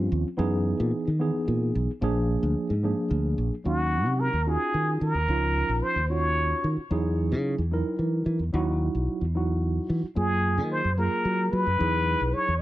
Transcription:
0.00 0.26 F3 medium
0.00 0.26 C4 medium
0.00 0.27 C#4 medium
0.00 0.27 F4 medium
0.12 0.23 D#2 medium
0.37 0.72 F#2 medium
0.37 1.07 E3 medium
0.37 1.08 B3 medium
0.37 1.08 D#4 medium
0.37 1.08 G#4 loud
0.80 0.91 A#2 medium
1.07 1.30 D#3 medium
1.19 1.89 E3 medium
1.19 1.90 B3 medium
1.19 1.90 D#4 medium
1.19 1.90 G#4 medium
1.48 1.70 A#2 medium
1.75 1.86 B1 medium
2.01 2.36 A#1 medium
2.01 2.71 F3 medium
2.01 2.71 A#3 medium
2.01 2.72 D4 medium
2.01 2.72 G#4 loud
2.43 2.54 D2 medium
2.70 2.92 G#2 medium
2.83 3.53 F3 medium
2.83 3.53 A#3 medium
2.83 3.53 D4 medium
2.83 3.54 G#4 medium
3.11 3.33 D2 medium
3.38 3.49 A#1 medium
3.64 4.05 D#2 medium
3.64 4.34 F#3 medium
3.64 4.35 C#4 medium
3.64 4.35 D#4 medium
3.64 4.35 F#4 medium
3.64 4.21 F#4 medium
4.05 4.28 C3 medium
4.20 4.49 A#4 medium
4.33 4.55 D#2 medium
4.46 5.16 C#4 medium
4.46 5.17 D#4 medium
4.46 5.16 F4 medium
4.46 5.17 F#4 medium
4.46 5.01 G#4 medium
4.74 4.96 D#3 medium
5.01 5.12 D#3 medium
5.01 5.84 A#4 medium
5.14 5.26 D#2 medium
5.28 5.62 C#2 medium
5.28 5.97 F3 medium
5.28 5.98 C#4 medium
5.28 5.98 D#4 medium
5.28 5.99 F4 medium
5.69 5.80 A#1 medium
5.82 6.12 C5 medium
5.82 muted fingered electric bass stroke soft
5.96 6.52 D#2 medium
6.10 6.79 C#4 medium
6.10 6.80 D#4 soft
6.10 6.79 F4 medium
6.10 6.80 F#4 medium
6.10 6.71 C#5 medium
6.64 6.75 D#3 medium
6.77 muted fingered electric bass stroke soft
6.90 7.33 E2 medium
6.90 7.60 F#3 medium
6.90 7.61 D#4 medium
6.90 7.61 E4 medium
6.90 7.61 G#4 medium
7.32 7.54 C#3 medium
7.58 7.81 E2 medium
7.71 8.42 F#3 medium
7.71 8.42 D#4 medium
7.71 8.42 E4 medium
7.71 8.43 A#4 medium
7.99 8.22 E3 medium
8.26 8.38 E3 medium
8.39 8.51 E2 medium
8.53 8.87 D#2 medium
8.53 9.23 F#3 medium
8.53 9.23 D#4 medium
8.53 9.24 E4 medium
8.53 9.24 F#4 medium
8.95 9.06 B1 medium
9.08 muted fingered electric bass stroke soft
9.21 9.78 E2 medium
9.35 10.05 F#3 medium
9.35 10.05 D#4 medium
9.35 10.05 E4 medium
9.35 10.06 F#4 medium
9.89 10.01 E3 medium
10.03 muted fingered electric bass stroke soft
10.15 10.59 F#2 medium
10.15 10.86 F#3 medium
10.15 10.86 A#3 medium
10.15 10.86 F4 medium
10.15 10.87 G#4 medium
10.15 10.68 G#4 medium
10.58 10.80 D#3 medium
10.71 10.97 C5 medium
10.85 11.07 F#2 medium
10.97 11.67 F#3 medium
10.97 11.68 A#3 medium
10.97 11.68 F4 medium
10.97 11.68 G#4 medium
10.97 11.54 A#4 medium
11.25 11.48 F#3 medium
11.52 11.64 F#3 medium
11.52 12.35 B4 loud
11.67 11.78 F#2 medium
11.78 12.14 E2 loud
11.78 12.49 F#3 medium
11.78 12.49 D#4 medium
11.78 12.49 E4 medium
11.78 12.50 G#4 medium
12.21 12.32 B1 medium
12.34 12.61 C#5 medium
12.34 muted fingered electric bass stroke soft
12.48 12.62 E2 medium

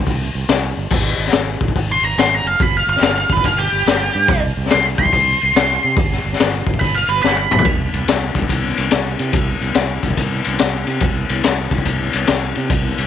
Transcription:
0.06 0.29 C2 loud
0.06 kick loud
0.06 open hi-hat medium
0.35 0.47 C2 medium
0.48 0.71 C2 medium
0.48 snare loud
0.48 open hi-hat medium
0.77 0.89 G1 medium
0.90 1.13 G#1 medium
0.90 kick loud
0.90 crash loud
1.18 1.30 G#1 medium
1.27 snare soft
1.32 1.56 G#1 medium
1.32 snare loud
1.32 open hi-hat medium
1.61 1.73 G#1 medium
1.61 kick medium
1.68 kick medium
1.75 1.98 G#1 medium
1.75 kick loud
1.75 open hi-hat medium
1.92 2.04 C6 loud
2.02 2.14 G#1 medium
2.02 2.18 A#5 medium
2.18 2.40 G#1 loud
2.18 2.35 C6 medium
2.18 snare loud
2.18 open hi-hat medium
2.35 2.47 A#5 loud
2.44 2.57 F#1 loud
2.44 2.61 F5 medium
2.60 2.82 G1 medium
2.60 2.75 B5 loud
2.60 kick loud
2.60 open hi-hat medium
2.77 2.88 F5 medium
2.87 2.99 G1 medium
2.87 3.03 F5 medium
2.96 snare soft
3.01 3.24 G1 medium
3.01 3.17 F5 loud
3.01 snare loud
3.01 open hi-hat medium
3.18 3.31 F5 loud
3.29 3.41 G1 loud
3.29 3.45 B4 medium
3.29 kick loud
3.37 kick medium
3.44 3.66 G1 loud
3.44 3.58 F5 loud
3.44 kick loud
3.44 open hi-hat medium
3.58 4.40 G4 loud
3.72 3.84 G1 medium
3.86 4.08 G1 medium
3.86 snare loud
3.86 open hi-hat medium
4.15 4.26 G2 loud
4.28 4.51 C2 loud
4.28 kick loud
4.28 open hi-hat medium
4.57 4.68 C2 medium
4.66 snare soft
4.70 4.94 C2 medium
4.70 4.84 C6 loud
4.70 snare loud
4.70 open hi-hat medium
4.98 5.10 C2 loud
4.98 5.12 C6 loud
4.98 kick medium
5.06 kick medium
5.13 5.35 C2 loud
5.13 5.94 C6 loud
5.13 kick loud
5.13 open hi-hat medium
5.43 5.53 C2 medium
5.55 5.77 C2 loud
5.55 snare loud
5.55 open hi-hat medium
5.84 5.95 C3 loud
5.96 6.19 G1 loud
5.96 kick loud
5.96 open hi-hat medium
6.12 snare soft
6.25 6.36 G1 loud
6.33 snare soft
6.39 6.61 G1 medium
6.39 snare loud
6.39 open hi-hat medium
6.67 6.78 G1 medium
6.67 kick loud
6.74 kick medium
6.80 7.03 G1 medium
6.80 6.94 B5 loud
6.80 kick loud
6.80 open hi-hat medium
6.95 7.09 F5 loud
7.08 7.20 G1 medium
7.08 7.22 B4 medium
7.23 7.46 G1 loud
7.23 7.36 B5 loud
7.23 snare medium
7.37 7.64 B5 loud
7.51 7.63 B1 loud
7.51 mid tom loud
7.59 floor tom loud
7.65 7.87 C2 medium
7.65 kick loud
7.65 ride medium
7.94 8.05 C2 medium
7.94 ride medium
8.08 8.29 C2 medium
8.08 snare loud
8.08 ride medium
8.35 8.47 C2 medium
8.35 kick medium
8.35 ride medium
8.42 kick medium
8.49 8.71 C2 medium
8.49 kick medium
8.49 ride medium
8.77 8.89 C2 medium
8.77 ride medium
8.91 9.14 C2 medium
8.91 snare loud
8.91 ride medium
9.19 9.31 C3 medium
9.19 ride medium
9.33 9.55 C2 medium
9.33 kick loud
9.33 ride loud
9.61 9.73 C2 medium
9.61 ride medium
9.74 9.98 C2 medium
9.74 snare loud
9.74 ride medium
10.03 10.15 C2 medium
10.03 kick medium
10.03 ride medium
10.10 kick medium
10.17 10.40 C2 medium
10.17 kick medium
10.17 ride medium
10.44 10.58 C2 medium
10.44 ride medium
10.59 10.83 C2 medium
10.59 snare loud
10.59 ride medium
10.87 10.99 C3 medium
10.87 ride medium
11.00 11.24 C2 medium
11.00 kick loud
11.00 ride medium
11.29 11.42 C2 medium
11.29 ride medium
11.44 11.67 C2 medium
11.44 snare loud
11.44 ride medium
11.71 11.83 C2 medium
11.71 kick medium
11.71 ride medium
11.78 kick medium
11.85 12.08 C2 medium
11.85 kick medium
11.85 ride medium
12.13 12.26 C2 medium
12.13 ride medium
12.27 12.51 C2 medium
12.27 snare loud
12.27 ride medium
12.55 12.68 C3 medium
12.55 ride medium
12.70 12.93 C2 medium
12.70 kick loud
12.70 ride medium
12.98 13.07 C2 medium
12.98 ride medium

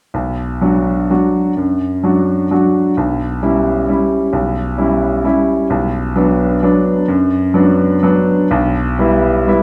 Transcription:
0.14 0.61 B1 soft
0.61 1.05 F#3 soft
0.61 1.06 D4 soft
0.61 1.06 F#4 soft
1.10 1.52 F#3 soft
1.10 1.52 D4 soft
1.10 1.52 F#4 soft
1.57 2.02 F#2 soft
2.03 2.47 F#3 soft
2.03 2.47 D4 soft
2.03 2.48 F#4 soft
2.51 2.93 F#3 soft
2.51 2.94 D4 soft
2.51 2.94 F#4 soft
2.97 3.41 B1 soft
3.42 3.85 G3 soft
3.42 3.85 C#4 soft
3.42 3.85 E4 soft
3.89 4.29 G3 soft
3.89 4.29 C#4 soft
3.89 4.29 E4 soft
4.33 4.76 B1 soft
4.78 5.20 G3 soft
4.78 5.20 C#4 soft
4.78 5.21 E4 soft
5.24 5.66 G3 soft
5.24 5.67 C#4 soft
5.24 5.67 E4 soft
5.70 6.14 B1 medium
6.16 6.58 F#3 soft
6.16 6.58 B3 soft
6.16 6.58 D4 soft
6.63 7.05 F#3 soft
6.63 7.05 B3 soft
6.63 7.05 D4 soft
7.08 7.52 F#2 medium
7.54 7.99 F#3 soft
7.54 7.99 B3 soft
7.54 7.99 D4 soft
8.03 8.47 F#3 soft
8.03 8.47 B3 soft
8.03 8.47 D4 soft
8.51 8.97 B1 medium
8.99 9.43 G3 soft
8.99 9.44 B3 soft
8.99 9.44 E4 soft
9.47 9.63 G3 soft
9.47 9.63 B3 soft
9.47 9.63 E4 soft

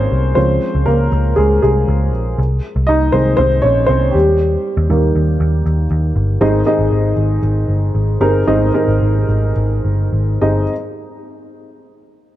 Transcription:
0.00 0.38 D#3 soft
0.00 0.36 G#3 medium
0.00 0.38 A#3 medium
0.00 0.37 C4 medium
0.00 0.37 C#4 medium
0.00 0.38 G#4 medium
0.00 0.38 A#4 medium
0.00 0.35 C5 medium
0.00 0.38 C#5 medium
0.12 0.32 C2 medium
0.35 0.57 C#2 medium
0.35 1.08 F3 soft
0.35 1.08 G#3 soft
0.35 0.84 C4 medium
0.35 1.08 C#4 medium
0.35 0.88 C5 medium
0.75 0.85 C#2 medium
0.86 1.08 C#2 medium
0.86 1.34 A#3 medium
0.86 1.38 A#4 medium
1.12 1.33 C#2 medium
1.36 1.58 C#2 medium
1.36 1.61 G#3 medium
1.36 1.61 G#4 medium
1.62 1.84 C2 medium
1.62 2.10 G#3 medium
1.62 2.09 G#4 medium
1.88 2.13 C#2 medium
2.13 2.34 A#1 medium
2.38 2.59 C2 medium
2.76 2.86 C2 medium
2.87 3.09 C2 medium
2.87 3.12 D#4 medium
2.87 3.14 D#5 medium
3.12 3.34 C2 medium
3.12 3.47 D#3 soft
3.12 3.48 G#3 soft
3.12 3.20 C4 medium
3.12 3.18 C5 medium
3.37 3.59 C2 loud
3.37 3.63 C4 medium
3.37 3.61 C5 medium
3.62 3.85 A#1 medium
3.62 3.88 C#4 medium
3.62 3.89 C#5 medium
3.86 4.10 C2 medium
3.86 4.13 C4 medium
3.86 4.14 C5 medium
4.11 4.56 D#2 medium
4.11 4.89 G3 medium
4.11 5.85 G4 medium
4.77 4.88 D#2 medium
4.89 5.11 D#2 medium
4.89 5.62 D#3 medium
4.89 5.62 G3 soft
4.89 5.62 A#3 medium
5.16 5.36 D#2 medium
5.40 5.61 D#2 medium
5.66 5.86 D#2 medium
5.91 6.11 D#2 medium
6.16 6.37 G1 medium
6.41 6.62 G#1 medium
6.41 7.13 G#2 medium
6.41 7.13 D#3 medium
6.41 6.59 C4 medium
6.41 6.59 D#4 medium
6.41 6.59 G#4 medium
6.41 6.59 D#5 medium
6.66 7.38 C4 medium
6.66 7.38 D#4 medium
6.66 7.38 G#4 medium
6.66 7.38 D#5 medium
6.79 6.89 G#1 medium
6.91 7.13 G#1 medium
7.17 7.38 G#1 medium
7.43 7.64 G#1 medium
7.68 7.90 G1 medium
7.95 8.16 G#1 medium
8.21 8.42 G1 medium
8.21 8.39 C4 medium
8.21 8.39 D#4 medium
8.21 8.40 G#4 medium
8.21 8.40 A#4 medium
8.47 8.69 G#1 medium
8.47 9.24 G#2 medium
8.47 9.24 D#3 medium
8.47 8.66 C4 medium
8.47 8.66 D#4 medium
8.47 8.66 G#4 medium
8.47 8.66 D#5 medium
8.74 9.51 C4 medium
8.74 9.51 D#4 medium
8.74 9.51 G#4 medium
8.74 9.51 A#4 medium
8.88 8.99 G#1 medium
9.01 9.24 G#1 medium
9.28 9.51 G#1 medium
9.56 9.79 G#1 medium
9.85 10.08 G1 medium
10.13 10.36 G#1 medium
10.41 10.66 G1 medium
10.41 10.62 C4 medium
10.41 10.62 D#4 medium
10.41 10.62 G#4 medium
10.41 10.62 D#5 medium

